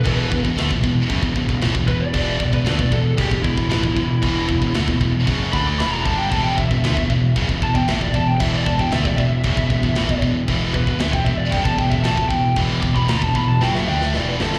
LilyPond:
<<
  \new Staff \with { instrumentName = "Lead electric guitar" } { \time 4/4 \key e \minor \tempo 4 = 115 b'8 r2. b'16 d''16~ | d''8. b'8 d''16 a'8 g'8 e'4.~ | e'4. r4 b''16 d'''16 b''16 ais''16 a''16 g''16 | a''16 g''16 e''4 r4 a''16 g''16 e''16 d''16 a''16 g''16 |
e''16 d''16 a''16 g''16 e''16 d''16 e''2 r8 | r8 b'8 e''16 g''16 e''16 d''16 g''16 a''16 g''16 e''16 a''8 g''8 | r8 d'''16 b''16 ais''16 a''16 b''16 a''16 g''16 e''16 g''16 e''16 d''16 b'16 a'8 | }
  \new Staff \with { instrumentName = "Distorted electric guitar" } { \clef bass \time 4/4 \key e \minor <e, b, e>8 <e, b,>16 <e, b,>16 <d a>16 <e, b,>16 <e, b,>8 <fis, cis>16 <e, b,>16 <e, b,>16 <e, b,>16 <a, e>16 <e, b,>16 <e, b,>8 | <e, b, e>8 <e, b,>16 <e, b,>16 <d a>16 <e, b,>16 <e, b,>8 <fis, cis>16 <e, b,>16 <e, b,>16 <e, b,>16 <a, e>16 <e, b,>16 <e, b,>8 | <e, b, e>8 <e, b,>16 <e, b,>16 <d a>16 <e, b,>16 <e, b,>8 <fis, cis fis>8 <d a d'>8 <e, b, e>8 <g, d g>8 | <e, b, e>8 <e, b,>16 <e, b,>16 <d a>16 <e, b,>16 <e, b,>8 <fis, cis>16 <e, b,>16 <e, b,>16 <e, b,>16 <a, e>16 <e, b,>16 <e, b,>8 |
<e, b, e>8 <e, b,>16 <e, b,>16 <d a>16 <e, b,>16 <e, b,>8 <fis, cis>16 <e, b,>16 <e, b,>16 <e, b,>16 <a, e>16 <e, b,>16 <e, b,>8 | <e, b, e>8 <e, b,>16 <e, b,>16 <d a>16 <e, b,>16 <e, b,>8 <fis, cis>16 <e, b,>16 <e, b,>16 <e, b,>16 <a, e>16 <e, b,>16 <e, b,>8 | <e, b, e>8 <e, b,>16 <e, b,>16 <d a>16 <e, b,>16 <e, b,>8 <fis, cis fis>8 <d a d'>8 <e, b, e>8 <g, d g>8 | }
  \new Staff \with { instrumentName = "Distorted electric guitar" } { \clef bass \time 4/4 \key e \minor <e, b, e>8 <e, b,>16 <e, b,>16 <d a>16 <e, b,>16 <e, b,>8 <fis, cis>16 <e, b,>16 <e, b,>16 <e, b,>16 <a, e>16 <e, b,>16 <e, b,>8 | <e, b, e>8 <e, b,>16 <e, b,>16 <d a>16 <e, b,>16 <e, b,>8 <fis, cis>16 <e, b,>16 <e, b,>16 <e, b,>16 <a, e>16 <e, b,>16 <e, b,>8 | <e, b, e>8 <e, b,>16 <e, b,>16 <d a>16 <e, b,>16 <e, b,>8 <fis, cis fis>8 <d a d'>8 <e, b, e>8 <g, d g>8 | <e, b, e>8 <e, b,>16 <e, b,>16 <d a>16 <e, b,>16 <e, b,>8 <fis, cis>16 <e, b,>16 <e, b,>16 <e, b,>16 <a, e>16 <e, b,>16 <e, b,>8 |
<e, b, e>8 <e, b,>16 <e, b,>16 <d a>16 <e, b,>16 <e, b,>8 <fis, cis>16 <e, b,>16 <e, b,>16 <e, b,>16 <a, e>16 <e, b,>16 <e, b,>8 | <e, b, e>8 <e, b,>16 <e, b,>16 <d a>16 <e, b,>16 <e, b,>8 <fis, cis>16 <e, b,>16 <e, b,>16 <e, b,>16 <a, e>16 <e, b,>16 <e, b,>8 | <e, b, e>8 <e, b,>16 <e, b,>16 <d a>16 <e, b,>16 <e, b,>8 <fis, cis fis>8 <d a d'>8 <e, b, e>8 <g, d g>8 | }
  \new Staff \with { instrumentName = "Picked electric bass" } { \clef bass \time 4/4 \key e \minor e,,8 e,,16 e,,16 d,16 e,,16 e,,8 fis,,16 e,,16 e,,16 e,,16 a,,16 e,,16 e,,8 | e,,8 e,,16 e,,16 d,16 e,,16 e,,8 fis,,16 e,,16 e,,16 e,,16 a,,16 e,,16 e,,8 | e,,8 e,,16 e,,16 d,16 e,,16 e,,8 fis,,8 d,8 e,,8 g,,8 | e,,8 e,,16 e,,16 d,16 e,,16 e,,8 fis,,16 e,,16 e,,16 e,,16 a,,16 e,,16 e,,8 |
e,,8 e,,16 e,,16 d,16 e,,16 e,,8 fis,,16 e,,16 e,,16 e,,16 a,,16 e,,16 e,,8 | e,,8 e,,16 e,,16 d,16 e,,16 e,,8 fis,,16 e,,16 e,,16 e,,16 a,,16 e,,16 e,,8 | e,,8 e,,16 e,,16 d,16 e,,16 e,,8 fis,,8 d,8 e,,8 g,,8 | }
  \new DrumStaff \with { instrumentName = "Drums" } \drummode { \time 4/4 <cymc bd>8 bd16 bd16 <cymc sn>16 bd16 bd8 <cymc bd>16 bd16 bd16 bd16 <cymc sn>16 bd16 bd8 | <cymc bd>8 bd16 bd16 <cymc sn>16 bd16 bd8 <cymc bd>16 bd16 bd16 bd16 <cymc sn>16 bd16 bd8 | <cymc bd>8 bd16 bd16 <cymc sn>16 bd16 bd8 <cymc bd>8 bd8 <cymc sn>8 bd8 | <cymc bd>8 bd16 bd16 <cymc sn>16 bd16 bd8 <cymc bd>16 bd16 bd16 bd16 <cymc sn>16 bd16 bd8 |
<cymc bd>8 bd16 bd16 <cymc sn>16 bd16 bd8 <cymc bd>16 bd16 bd16 bd16 <cymc sn>16 bd16 bd8 | <cymc bd>8 bd16 bd16 <cymc sn>16 bd16 bd8 <cymc bd>16 bd16 bd16 bd16 <cymc sn>16 bd16 bd8 | <cymc bd>8 bd16 bd16 <cymc sn>16 bd16 bd8 sn16 sn8 sn16 sn8 sn16 sn16 | }
>>